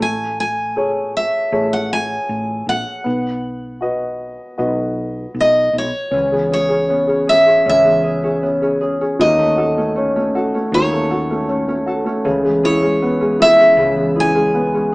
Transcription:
0.00 1.30 A1 medium
0.00 3.01 A3 medium
0.00 0.39 G#5 medium
0.40 1.16 G#5 medium
0.76 1.50 G#4 soft
0.76 1.50 A4 soft
0.76 1.51 C#5 soft
1.17 1.73 E5 medium
1.52 2.17 A1 medium
1.52 2.26 G#4 soft
1.52 2.27 A4 soft
1.52 2.27 C#5 soft
1.73 1.92 F#5 medium
1.93 2.69 G#5 medium
2.29 2.62 A1 medium
2.67 2.83 A#1 medium
2.67 5.72 F#5 medium
3.04 4.36 B1 medium
3.04 6.09 B3 soft
3.81 4.56 F#4 soft
3.81 4.56 B4 soft
3.81 4.57 D#5 medium
4.58 5.25 B1 medium
4.58 5.33 F#4 soft
4.58 5.34 B4 soft
4.58 5.34 D#5 soft
5.34 5.68 B1 medium
5.40 5.78 D#5 medium
5.73 5.90 B1 medium
5.78 6.52 C#5 medium
6.11 7.43 C#2 medium
6.11 7.64 E3 medium
6.11 6.48 C#4 medium
6.32 6.89 B3 soft
6.32 6.67 G#4 soft
6.49 6.87 C#4 soft
6.49 7.27 G#4 medium
6.53 7.29 C#5 medium
6.69 7.09 C#4 soft
6.69 7.06 G#4 soft
6.88 7.84 B3 soft
6.88 7.27 C#4 soft
7.07 7.47 C#4 soft
7.07 7.45 G#4 soft
7.27 7.64 C#4 soft
7.27 8.03 G#4 medium
7.27 7.68 E5 medium
7.46 8.23 C#4 medium
7.46 7.83 G#4 soft
7.65 8.97 C#2 medium
7.65 9.25 E3 medium
7.65 8.02 C#4 medium
7.65 8.79 E5 medium
7.84 8.42 B3 soft
7.84 8.22 G#4 soft
8.03 8.41 C#4 soft
8.03 8.80 G#4 medium
8.24 8.62 C#4 soft
8.24 8.60 G#4 soft
8.42 11.53 B3 soft
8.42 8.80 C#4 medium
8.62 9.01 C#4 soft
8.62 9.00 G#4 soft
8.81 9.19 C#4 soft
8.81 9.44 G#4 medium
9.01 9.77 C#4 medium
9.01 9.20 G#4 soft
9.19 10.51 D#2 medium
9.19 10.73 D#3 medium
9.19 10.72 F#3 medium
9.19 10.70 D#5 medium
9.37 9.76 A3 soft
9.37 9.95 A3 soft
9.57 10.34 F#4 soft
9.57 10.35 A4 medium
9.78 10.15 A3 soft
9.78 10.16 C#4 soft
9.96 10.92 A3 soft
9.96 11.45 C#4 medium
10.16 10.54 A3 soft
10.16 10.54 C#4 soft
10.35 11.09 F#4 medium
10.35 11.10 A4 medium
10.54 10.92 A3 soft
10.54 11.30 C#4 medium
10.72 12.02 D#2 medium
10.72 12.22 D#3 medium
10.72 12.31 F#3 medium
10.72 11.84 C#5 medium
10.93 11.49 A3 medium
10.93 11.30 A3 soft
11.10 11.85 F#4 soft
11.10 11.87 A4 medium
11.30 11.67 A3 medium
11.30 11.68 C#4 soft
11.48 12.69 A3 medium
11.48 12.23 C#4 soft
11.68 12.03 A3 soft
11.68 12.06 C#4 medium
11.86 12.24 F#4 soft
11.86 12.69 A4 medium
12.05 12.24 A3 soft
12.05 12.82 C#4 medium
12.25 13.55 C#2 medium
12.25 13.77 C#3 medium
12.25 13.76 E3 medium
12.44 12.81 G#3 soft
12.44 13.02 B3 soft
12.63 13.38 E4 medium
12.63 13.39 G#4 medium
12.63 13.41 C#5 medium
12.82 13.19 G#3 soft
12.82 13.20 C#4 medium
13.02 13.96 B3 soft
13.02 14.51 B3 soft
13.21 13.58 G#3 medium
13.21 13.58 C#4 soft
13.40 14.14 E4 medium
13.40 14.15 G#4 medium
13.40 14.20 E5 medium
13.59 13.96 G#3 soft
13.59 14.34 C#4 medium
13.77 14.95 C#2 medium
13.77 14.95 C#3 medium
13.77 14.95 E3 medium
13.96 14.34 G#3 soft
13.96 14.55 B3 medium
14.16 14.94 E4 soft
14.16 14.92 G#4 medium
14.20 14.95 G#5 medium
14.35 14.72 G#3 medium
14.35 14.74 C#4 medium
14.54 14.95 B3 soft
14.54 14.95 B3 medium
14.74 14.95 G#3 soft
14.74 14.95 C#4 soft

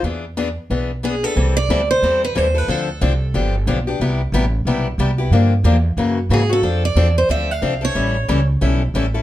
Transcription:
0.03 0.56 E2 medium
0.03 0.24 E3 medium
0.03 0.24 B3 medium
0.03 0.24 D4 medium
0.03 0.24 G#4 medium
0.37 0.48 E3 medium
0.37 0.48 B3 medium
0.37 0.48 D4 medium
0.37 0.48 G#4 loud
0.70 1.23 B1 medium
0.70 0.90 E3 medium
0.70 0.90 B3 medium
0.70 0.90 D4 medium
0.70 0.91 G#4 medium
1.03 1.14 E3 medium
1.03 1.14 B3 medium
1.03 1.14 D4 medium
1.03 1.14 G#4 medium
1.03 1.24 G#4 medium
1.23 1.36 B3 soft
1.23 1.36 D4 soft
1.23 1.36 G#4 soft
1.23 1.56 A4 medium
1.36 1.68 C2 medium
1.36 1.56 E3 medium
1.36 1.56 G3 medium
1.36 1.56 C4 medium
1.36 1.56 E4 medium
1.36 1.56 A4 medium
1.57 1.90 D5 loud
1.69 2.01 D2 medium
1.69 1.80 E3 medium
1.69 1.80 G3 medium
1.69 1.80 C4 medium
1.69 1.80 E4 medium
1.69 1.81 A4 medium
1.91 2.20 C5 medium
2.02 2.34 E2 medium
2.02 2.23 E3 medium
2.02 2.23 G3 medium
2.02 2.23 C4 medium
2.02 2.23 E4 medium
2.02 2.23 A4 medium
2.24 2.38 B4 medium
2.35 2.67 D#2 medium
2.35 2.46 E3 medium
2.35 2.46 G3 medium
2.35 2.46 C4 medium
2.35 2.46 E4 medium
2.35 2.47 A4 medium
2.35 2.58 C5 medium
2.54 2.68 C4 soft
2.54 2.68 E4 soft
2.54 2.68 A4 medium
2.54 2.70 B4 medium
2.68 3.00 D2 medium
2.68 2.88 D3 medium
2.68 2.88 F3 medium
2.68 2.89 C4 medium
2.68 2.89 D4 medium
2.68 2.89 A4 medium
2.68 3.68 A4 medium
3.01 3.33 C2 medium
3.01 3.12 D3 medium
3.01 3.12 F3 medium
3.01 3.12 C4 medium
3.01 3.12 D4 medium
3.01 3.12 A4 medium
3.34 3.66 G1 medium
3.34 3.54 D3 medium
3.34 3.54 F3 medium
3.34 3.54 B3 medium
3.34 3.55 D4 medium
3.34 3.55 G4 medium
3.67 3.99 B1 medium
3.67 3.78 D3 medium
3.67 3.78 F3 medium
3.67 3.78 B3 medium
3.67 3.78 D4 medium
3.67 3.78 G4 medium
3.87 4.00 B3 soft
3.87 4.00 D4 soft
3.87 4.00 G4 medium
4.00 4.32 C2 medium
4.00 4.20 C3 medium
4.00 4.21 G3 medium
4.00 4.21 B3 medium
4.00 4.21 E4 medium
4.00 4.21 G4 medium
4.32 4.65 A1 medium
4.32 4.44 C3 medium
4.32 4.44 G3 medium
4.32 4.44 B3 medium
4.32 4.45 E4 medium
4.32 4.45 G4 medium
4.65 4.97 B1 medium
4.65 4.86 C3 medium
4.65 4.86 G3 medium
4.65 4.86 B3 medium
4.65 4.87 E4 medium
4.65 4.87 G4 medium
4.98 5.30 C2 medium
4.98 5.10 C3 medium
4.98 5.10 G3 medium
4.98 5.10 B3 medium
4.98 5.10 E4 medium
4.98 5.10 G4 medium
5.18 5.32 B3 soft
5.18 5.32 E4 soft
5.18 5.31 G4 medium
5.31 5.63 G2 medium
5.31 5.52 D3 medium
5.31 5.52 F3 medium
5.31 5.52 A#3 medium
5.31 5.52 D4 medium
5.31 5.53 G4 medium
5.64 5.96 E2 medium
5.64 5.75 D3 medium
5.64 5.75 F3 medium
5.64 5.76 A#3 medium
5.64 5.76 D4 medium
5.64 5.76 G4 loud
5.97 6.29 F#2 medium
5.97 6.18 C#3 medium
5.97 6.18 E3 medium
5.97 6.18 A#3 medium
5.97 6.18 C#4 medium
5.97 6.18 F#4 medium
6.29 6.62 G#2 medium
6.29 6.41 C#3 medium
6.29 6.41 E3 medium
6.29 6.42 A#3 medium
6.29 6.42 C#4 medium
6.29 6.42 F#4 medium
6.33 6.50 G#4 medium
6.49 6.63 A#3 soft
6.49 6.63 C#4 medium
6.49 6.63 F#4 medium
6.49 6.82 A4 medium
6.62 6.95 F2 medium
6.62 6.83 F3 medium
6.62 6.83 C4 medium
6.62 6.84 D4 medium
6.62 6.84 A4 medium
6.85 7.18 D5 medium
6.96 7.28 E2 medium
6.96 7.07 F3 medium
6.96 7.07 C4 medium
6.96 7.07 D4 medium
6.96 7.08 A4 loud
7.18 7.30 C5 medium
7.29 7.61 D2 medium
7.29 7.49 F3 medium
7.29 7.50 C4 medium
7.29 7.50 D4 medium
7.29 7.50 A4 medium
7.29 7.51 E5 medium
7.51 7.84 F5 loud
7.62 7.94 C2 medium
7.62 7.73 F3 medium
7.62 7.73 C4 medium
7.62 7.73 D4 medium
7.62 7.73 A4 medium
7.81 7.95 C4 soft
7.81 7.95 D4 medium
7.81 7.95 A4 medium
7.81 8.45 C#5 medium
7.95 8.27 A1 medium
7.95 8.15 E3 medium
7.95 8.15 G3 medium
7.95 8.16 C#4 medium
7.95 8.16 E4 medium
7.95 8.16 A4 medium
8.28 8.61 C#2 medium
8.28 8.39 E3 medium
8.28 8.39 G3 medium
8.28 8.39 C#4 loud
8.28 8.39 E4 medium
8.28 8.40 A4 loud
8.61 8.94 B1 medium
8.61 8.81 E3 medium
8.61 8.81 G3 medium
8.61 8.81 C#4 medium
8.61 8.82 E4 medium
8.61 8.82 A4 medium
8.94 9.22 A1 medium
8.94 9.05 E3 medium
8.94 9.05 G3 medium
8.94 9.05 C#4 medium
8.94 9.05 E4 medium
8.94 9.06 A4 medium
9.14 9.22 C#4 soft
9.14 9.22 E4 medium
9.14 9.22 A4 medium

